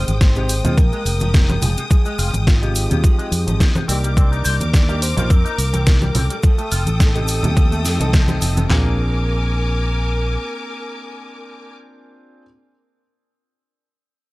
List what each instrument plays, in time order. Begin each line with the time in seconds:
Already playing: grand piano G#3 C4 D#4 G4, string section G#3 G5 D#6, soft synth lead C5
0.08 fingered electric bass G#1, closed hi-hat, high conga, cabasa
0.20 soft synth lead C5, kick, snare, closed hi-hat, cabasa
0.35 clean electric guitar C3, grand piano G#3 C4 D#4 G4, closed hi-hat, cabasa
0.49 open hi-hat, cabasa
0.64 fingered electric bass D#2, clean electric guitar C3, grand piano G#3 C4 D#4 F4, closed hi-hat, low conga, cabasa
0.77 fingered electric bass A#1, clean electric guitar F3, soft synth lead A#4, kick, closed hi-hat, cabasa
0.92 clean electric guitar G#3, closed hi-hat, cabasa
1.05 fingered electric bass F1, open hi-hat, cabasa
1.20 clean electric guitar F3, closed hi-hat, high conga, cabasa
1.34 clean electric guitar F2, kick, snare, closed hi-hat, cabasa
1.49 clean electric guitar C3, closed hi-hat, high conga, cabasa
1.62 fingered electric bass F1, clean electric guitar F3, soft synth lead G#4, open hi-hat, low conga, cabasa
1.77 clean electric guitar C3, closed hi-hat, cabasa
1.90 clean electric guitar F3, soft synth lead G#4, kick, closed hi-hat, cabasa
2.05 clean electric guitar G#3, closed hi-hat, cabasa
2.19 fingered electric bass F1, clean electric guitar F4, open hi-hat, cabasa
2.34 fingered electric bass G#1, closed hi-hat, high conga, cabasa
2.47 soft synth lead F4, kick, snare, closed hi-hat, cabasa
2.62 clean electric guitar C3, grand piano G#3 C4 D#4 G4, closed hi-hat, cabasa
2.75 open hi-hat, cabasa
2.90 fingered electric bass D#2, clean electric guitar C3, grand piano G#3 C4 D#4 G4, closed hi-hat, low conga, cabasa
3.03 clean electric guitar F3, kick, closed hi-hat, cabasa
3.19 clean electric guitar G#3, closed hi-hat, cabasa
3.32 fingered electric bass F2, open hi-hat, cabasa
3.47 fingered electric bass G#1, clean electric guitar F3, closed hi-hat, high conga, cabasa
3.60 clean electric guitar F2, kick, snare, closed hi-hat, cabasa
3.75 clean electric guitar C3, closed hi-hat, high conga, cabasa
3.88 fingered electric bass C2, grand piano A#3 D#4 G4 D5, clean electric guitar C4, string section A#4 D6, open hi-hat, cabasa
4.04 clean electric guitar G3, closed hi-hat, cabasa
4.17 clean electric guitar C4, soft synth lead D5, kick, closed hi-hat, cabasa
4.32 clean electric guitar D#4, closed hi-hat, cabasa
4.45 fingered electric bass C2, clean electric guitar C5, open hi-hat, cabasa
4.60 fingered electric bass D#2, closed hi-hat, high conga, cabasa
4.74 soft synth lead D5, kick, snare, closed hi-hat, cabasa
4.89 clean electric guitar G3, grand piano A#3 D4 D#4 G4, closed hi-hat, cabasa
5.02 soft synth lead C5, open hi-hat, cabasa
5.17 fingered electric bass A#1, clean electric guitar G3, grand piano A#3 D4 D#4 F4, closed hi-hat, low conga, cabasa
5.30 fingered electric bass F2, clean electric guitar C4, soft synth lead A#4, kick, closed hi-hat, cabasa
5.45 clean electric guitar D#4, closed hi-hat, cabasa
5.58 fingered electric bass C2, open hi-hat, cabasa
5.73 clean electric guitar C4, closed hi-hat, high conga, cabasa
5.86 clean electric guitar C3, kick, snare, closed hi-hat, cabasa
6.02 clean electric guitar G3, closed hi-hat, high conga, cabasa
6.09 soft synth lead A#4
6.15 fingered electric bass C2, clean electric guitar C4, soft synth lead A4, open hi-hat, low conga, cabasa
6.30 clean electric guitar G3, closed hi-hat, cabasa
6.43 clean electric guitar F3, string section A4 G5 D#6, kick, closed hi-hat, cabasa
6.58 clean electric guitar A3, closed hi-hat, cabasa
6.72 fingered electric bass F1, clean electric guitar F4, open hi-hat, cabasa
6.86 fingered electric bass A1, closed hi-hat, high conga, cabasa
7.00 kick, snare, closed hi-hat, cabasa
7.15 clean electric guitar C3, grand piano A3 C4 D#4 G4, closed hi-hat, cabasa
7.28 open hi-hat, cabasa
7.43 fingered electric bass D#2, clean electric guitar C3, grand piano A3 C4 D#4 G4, closed hi-hat, low conga, cabasa
7.57 clean electric guitar F3, kick, closed hi-hat, cabasa
7.72 clean electric guitar A3, closed hi-hat, cabasa
7.85 fingered electric bass F2, snare, open hi-hat, cabasa
7.99 fingered electric bass C2, clean electric guitar F3, grand piano A3 C4 D#4 A4, closed hi-hat, high conga, cabasa
8.13 clean electric guitar F2, kick, snare, closed hi-hat, cabasa
8.28 clean electric guitar C3, closed hi-hat, high conga, cabasa
8.41 fingered electric bass F1, clean electric guitar F3, open hi-hat, cabasa
8.57 clean electric guitar C3, closed hi-hat, high conga, cabasa
8.68 fingered electric bass A#1, clean electric guitar A#3, grand piano C4 D4 F4 G#4, string section A#4 G#5 D6, soft synth lead A#4, snare, clap, floor tom